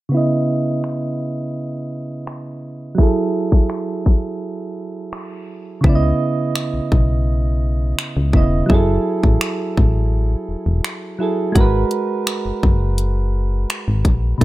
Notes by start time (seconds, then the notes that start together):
0.09 C#3 B3
0.14 E4 D#5
0.84 finger snap
2.27 finger snap
2.95 F#3 E4, kick
3.00 G#4 A4
3.52 kick
3.70 finger snap
4.06 kick
5.13 finger snap
5.81 C#2 C#3 B3, kick
5.86 E4 D5
5.95 D#5
6.56 finger snap
6.74 B1
6.92 B1, kick
7.99 finger snap
8.17 C#2
8.33 E1 C#3 B3 E4, kick
8.37 D#5
8.66 F#1 F#3 E4, kick
8.72 G#4 A4
9.23 A1, kick
9.41 finger snap
9.77 A1, kick
10.49 E1
10.66 E1
10.84 finger snap
11.19 F#3 E4 G#4 A4
11.52 G#1 G#3 F#4, kick, closed hi-hat
11.57 A#4 B4
11.91 closed hi-hat
12.27 finger snap, closed hi-hat
12.45 F#1
12.63 F#1, kick
12.98 closed hi-hat
13.70 finger snap, closed hi-hat
13.88 G#1
14.05 A#1, kick, closed hi-hat
14.38 B2 A3, kick